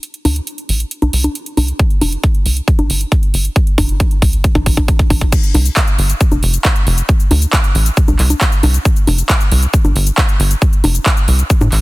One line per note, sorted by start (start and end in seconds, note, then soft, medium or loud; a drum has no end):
0.03 closed hi-hat medium
0.14 closed hi-hat soft
0.25 0.40 D2 loud
0.25 open hi-hat loud
0.25 high conga medium
0.36 closed hi-hat medium
0.47 closed hi-hat medium
0.58 closed hi-hat soft
0.69 0.84 A1 medium
0.69 open hi-hat medium
0.80 closed hi-hat medium
0.91 closed hi-hat medium
1.02 1.10 C2 medium
1.02 closed hi-hat soft
1.02 high conga medium
1.13 1.28 C2 loud
1.13 open hi-hat loud
1.24 closed hi-hat medium
1.24 high conga medium
1.35 closed hi-hat medium
1.46 closed hi-hat soft
1.57 1.73 C2 loud
1.57 open hi-hat medium
1.57 high conga medium
1.68 closed hi-hat soft
1.79 kick loud
1.79 closed hi-hat medium
1.90 closed hi-hat soft
2.01 2.17 F1 loud
2.01 open hi-hat loud
2.01 high conga medium
2.12 closed hi-hat soft
2.23 kick loud
2.23 closed hi-hat medium
2.35 closed hi-hat soft
2.46 2.61 C2 medium
2.46 open hi-hat loud
2.57 closed hi-hat soft
2.68 kick loud
2.68 closed hi-hat medium
2.79 2.86 G1 medium
2.79 closed hi-hat soft
2.79 high conga medium
2.90 3.05 G1 loud
2.90 open hi-hat loud
3.01 closed hi-hat medium
3.12 kick loud
3.12 closed hi-hat medium
3.23 closed hi-hat soft
3.34 3.49 G1 loud
3.34 open hi-hat medium
3.45 closed hi-hat soft
3.56 kick loud
3.56 closed hi-hat medium
3.67 closed hi-hat soft
3.78 3.93 F1 loud
3.78 kick loud
3.78 open hi-hat loud
3.78 high conga medium
3.89 closed hi-hat soft
4.00 kick loud
4.00 closed hi-hat medium
4.11 closed hi-hat soft
4.22 4.37 C2 medium
4.22 kick loud
4.22 open hi-hat loud
4.33 closed hi-hat medium
4.44 kick loud
4.44 closed hi-hat medium
4.55 4.63 A1 medium
4.55 kick medium
4.55 closed hi-hat soft
4.55 high conga medium
4.66 4.81 A1 loud
4.66 kick loud
4.66 open hi-hat loud
4.77 kick medium
4.77 closed hi-hat medium
4.77 high conga medium
4.88 kick loud
4.88 closed hi-hat medium
4.99 kick loud
4.99 closed hi-hat soft
5.10 5.26 A1 loud
5.10 kick loud
5.10 open hi-hat loud
5.10 high conga medium
5.21 kick loud
5.21 closed hi-hat medium
5.32 kick loud
5.32 closed hi-hat medium
5.32 crash loud
5.32 shaker medium
5.43 closed hi-hat soft
5.43 shaker soft
5.54 5.70 C2 loud
5.54 open hi-hat loud
5.54 high conga medium
5.66 closed hi-hat medium
5.66 shaker medium
5.76 kick loud
5.76 clap loud
5.76 closed hi-hat medium
5.76 shaker medium
5.88 closed hi-hat soft
5.88 shaker soft
5.99 6.14 G1 medium
5.99 open hi-hat medium
6.10 closed hi-hat medium
6.10 shaker medium
6.21 kick loud
6.21 closed hi-hat medium
6.21 shaker medium
6.32 6.39 F1 medium
6.32 closed hi-hat soft
6.32 high conga medium
6.32 shaker soft
6.43 6.58 F1 loud
6.43 open hi-hat loud
6.54 closed hi-hat medium
6.54 shaker medium
6.65 kick loud
6.65 clap loud
6.65 closed hi-hat medium
6.65 shaker medium
6.76 closed hi-hat soft
6.76 shaker soft
6.87 7.02 F1 loud
6.87 open hi-hat medium
6.98 closed hi-hat medium
6.98 shaker medium
7.09 kick loud
7.09 closed hi-hat medium
7.09 shaker medium
7.20 closed hi-hat soft
7.20 shaker soft
7.31 7.46 D2 loud
7.31 open hi-hat loud
7.31 high conga medium
7.42 closed hi-hat medium
7.42 shaker medium
7.53 kick loud
7.53 clap loud
7.53 closed hi-hat medium
7.53 shaker medium
7.64 closed hi-hat soft
7.64 shaker soft
7.75 7.90 A1 medium
7.75 open hi-hat medium
7.86 closed hi-hat medium
7.86 shaker medium
7.97 kick loud
7.97 closed hi-hat medium
7.97 shaker medium
8.08 8.16 C2 medium
8.08 closed hi-hat soft
8.08 high conga medium
8.08 shaker soft
8.19 8.34 C2 loud
8.19 clap soft
8.19 open hi-hat loud
8.30 closed hi-hat medium
8.30 high conga medium
8.30 shaker medium
8.41 kick loud
8.41 clap loud
8.41 closed hi-hat medium
8.41 shaker medium
8.52 closed hi-hat soft
8.52 shaker soft
8.63 8.78 C2 loud
8.63 open hi-hat loud
8.63 high conga medium
8.74 closed hi-hat medium
8.74 shaker medium
8.85 kick loud
8.85 closed hi-hat medium
8.85 shaker medium
8.96 closed hi-hat soft
8.96 shaker soft
9.07 9.23 F1 loud
9.07 open hi-hat loud
9.07 high conga medium
9.18 closed hi-hat medium
9.18 shaker medium
9.29 kick loud
9.29 clap loud
9.29 closed hi-hat medium
9.29 shaker medium
9.40 closed hi-hat soft
9.40 shaker soft
9.52 9.67 C2 medium
9.52 open hi-hat loud
9.63 closed hi-hat medium
9.63 shaker medium
9.74 kick loud
9.74 closed hi-hat medium
9.74 shaker medium
9.85 9.92 G1 medium
9.85 closed hi-hat soft
9.85 high conga medium
9.85 shaker soft
9.96 10.11 G1 loud
9.96 open hi-hat loud
10.07 closed hi-hat medium
10.07 shaker medium
10.18 kick loud
10.18 clap loud
10.18 closed hi-hat medium
10.18 shaker medium
10.29 closed hi-hat soft
10.29 shaker soft
10.40 10.55 G1 loud
10.40 open hi-hat loud
10.51 closed hi-hat soft
10.51 shaker medium
10.62 kick loud
10.62 closed hi-hat medium
10.62 shaker medium
10.73 closed hi-hat soft
10.73 shaker soft
10.84 10.99 F1 loud
10.84 open hi-hat loud
10.84 high conga medium
10.95 closed hi-hat soft
10.95 shaker medium
11.06 kick loud
11.06 clap loud
11.06 closed hi-hat medium
11.06 shaker medium
11.17 closed hi-hat soft
11.17 shaker soft
11.28 11.43 C2 medium
11.28 open hi-hat loud
11.39 closed hi-hat medium
11.39 shaker medium
11.50 kick loud
11.50 closed hi-hat medium
11.50 shaker medium
11.61 11.69 A2 medium
11.61 closed hi-hat soft
11.61 high conga medium
11.61 shaker soft
11.72 11.81 A1 loud
11.72 clap soft
11.72 open hi-hat loud